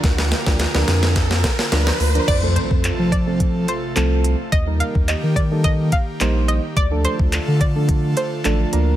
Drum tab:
CC |----------------|x---------------|----------------|----------------|
HH |x-x-x-x-x-x-x-ox|x-x-x-x-x-x-x-x-|x-x-x-x-x-x-x-x-|x-x-x-x-x-x-x-x-|
CP |----------------|----x-------x---|----x-------x---|----x-------x---|
SD |oooooooooooooo--|----------------|----------------|----------------|
BD |o--o----o-o-----|o--o--o-o-------|o--o--o-o-o-----|o--o--o-o-------|